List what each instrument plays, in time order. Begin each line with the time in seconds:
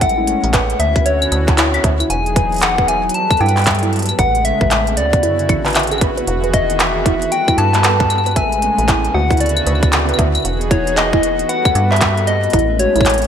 Already playing: synth texture B3 B4
0.01 fm bass A1, analog synth pad G#3 A3 C#4, synth pluck E5, soft synth lead F#5, kick, closed hi-hat
0.09 closed hi-hat
0.18 synth pluck E4
0.27 closed hi-hat
0.44 fm bass A1, closed hi-hat
0.53 synth pluck B4, kick, clap, closed hi-hat
0.70 closed hi-hat
0.80 fm bass D2, analog synth pad D3 C#4 E4 F#4, soft synth lead E5, closed hi-hat
0.96 synth pluck B4, kick, closed hi-hat
1.06 soft synth lead C#5, synth pluck E5, closed hi-hat
1.22 closed hi-hat, claves
1.32 fm bass D2, closed hi-hat, claves
1.48 kick, clap, closed hi-hat
1.58 synth pluck E4, clap, closed hi-hat, claves
1.74 closed hi-hat, claves
1.84 fm bass D2, synth pluck E5, kick, closed hi-hat
2.00 synth pluck E4, closed hi-hat, claves
2.10 fm bass E1, analog synth pad E3 F#3 D#4 G#4, soft synth lead G#5, closed hi-hat
2.26 closed hi-hat
2.36 synth pluck B4, kick, closed hi-hat
2.52 closed hi-hat
2.54 closed hi-hat
2.56 closed hi-hat
2.58 closed hi-hat
2.60 clap, closed hi-hat
2.62 soft synth lead F#5, closed hi-hat
2.78 synth pluck B4, kick
2.88 synth pluck E5, soft synth lead G#5, closed hi-hat
3.09 closed hi-hat
3.14 analog synth pad G3 A4 B4, soft synth lead A5, closed hi-hat
3.31 kick, closed hi-hat, claves
3.37 fm bass G2, synth pluck E4, closed hi-hat
3.41 soft synth lead G5, closed hi-hat
3.46 closed hi-hat
3.49 closed hi-hat
3.57 clap, closed hi-hat
3.59 closed hi-hat
3.62 closed hi-hat
3.64 kick, clap, closed hi-hat
3.67 synth pluck E5, closed hi-hat
3.71 closed hi-hat
3.75 closed hi-hat
3.79 closed hi-hat
3.83 synth pluck E4, closed hi-hat
3.93 closed hi-hat
3.96 closed hi-hat
3.99 closed hi-hat
4.02 closed hi-hat
4.06 closed hi-hat
4.09 closed hi-hat, claves
4.19 fm bass A1, analog synth pad C#3 G#3 A3, synth pluck B4, soft synth lead F#5, kick, closed hi-hat
4.35 closed hi-hat
4.45 soft synth lead E5, closed hi-hat
4.61 fm bass A1, synth pluck B4, kick
4.71 synth pluck E5, clap, closed hi-hat
4.87 closed hi-hat
4.97 fm bass D2, analog synth pad D3 E4 F#4, soft synth lead D5, closed hi-hat
5.13 kick, closed hi-hat
5.23 fm bass F#2, synth pluck E4, closed hi-hat
5.39 closed hi-hat
5.49 fm bass A1, synth pluck E3, kick, closed hi-hat, claves
5.65 synth pluck B4, clap, closed hi-hat
5.68 closed hi-hat
5.70 closed hi-hat
5.73 clap, closed hi-hat
5.75 synth pluck E5, closed hi-hat, claves
5.79 closed hi-hat
5.83 closed hi-hat
5.87 closed hi-hat
5.91 synth pluck G#4, closed hi-hat, claves
5.98 synth pluck B4, kick, closed hi-hat, claves
6.17 synth pluck B4, closed hi-hat
6.27 fm bass E1, analog synth pad D#3 E3 G#4, closed hi-hat
6.44 synth pluck B4, closed hi-hat
6.53 soft synth lead D#5, synth pluck E5, kick, closed hi-hat
6.70 closed hi-hat
6.80 soft synth lead E5, clap, closed hi-hat
7.06 synth pluck E4, kick, closed hi-hat
7.22 closed hi-hat
7.32 analog synth pad G3 A4 B4, synth pluck F#4, soft synth lead G5, closed hi-hat
7.48 synth pluck E4, kick, closed hi-hat, claves
7.58 fm bass G2, soft synth lead A5, closed hi-hat
7.74 clap, closed hi-hat
7.84 synth pluck B4, clap, closed hi-hat
8.00 kick, closed hi-hat
8.10 closed hi-hat, claves
8.18 claves
8.26 synth pluck B4, closed hi-hat, claves
8.31 claves
8.36 fm bass A1, analog synth pad C#3 G#3 A3, synth pluck E5, soft synth lead G#5, kick, closed hi-hat
8.52 closed hi-hat
8.62 closed hi-hat
8.78 fm bass A1, closed hi-hat
8.88 synth pluck E4, kick, clap, closed hi-hat
9.05 closed hi-hat
9.14 fm bass D2, analog synth pad D3 E4 F#4, synth pluck F#4, soft synth lead F#5
9.31 synth pluck E4, kick, closed hi-hat
9.37 closed hi-hat
9.40 soft synth lead D5, closed hi-hat
9.46 closed hi-hat
9.49 closed hi-hat
9.57 closed hi-hat, claves
9.67 fm bass D2, synth pluck B4, closed hi-hat, claves
9.75 claves
9.83 kick, closed hi-hat, claves
9.93 clap, closed hi-hat, claves
10.09 synth pluck B4, closed hi-hat
10.14 claves
10.19 fm bass D2, synth pluck E5, kick, closed hi-hat
10.35 closed hi-hat, claves
10.37 claves
10.40 claves
10.45 fm bass E1, analog synth pad E3 D#4 F#4 G#4, closed hi-hat, claves
10.49 claves
10.53 claves
10.57 closed hi-hat, claves
10.71 synth pluck E4, soft synth lead C#5, kick, closed hi-hat
10.87 closed hi-hat
10.97 synth pluck F#4, soft synth lead D#5, clap, closed hi-hat
11.13 synth pluck E4, kick
11.23 closed hi-hat
11.39 closed hi-hat
11.49 analog synth pad G3 A4 B4, synth pluck B4, soft synth lead F#5, closed hi-hat
11.65 kick, closed hi-hat, claves
11.75 fm bass G2, closed hi-hat
11.91 synth pluck B4, soft synth lead E5, clap
11.96 closed hi-hat
12.01 synth pluck E5, kick, clap, closed hi-hat
12.17 closed hi-hat
12.27 soft synth lead D#5, closed hi-hat
12.43 closed hi-hat
12.50 kick, closed hi-hat
12.53 fm bass A1, analog synth pad G#3 A3 C#4, synth pluck E4, closed hi-hat
12.59 closed hi-hat
12.79 synth pluck F#4, soft synth lead C#5, closed hi-hat
12.96 fm bass A1, synth pluck E4, closed hi-hat, claves
12.98 claves
13.01 kick, claves
13.03 clap, closed hi-hat, claves
13.10 closed hi-hat
13.14 closed hi-hat
13.18 closed hi-hat
13.22 closed hi-hat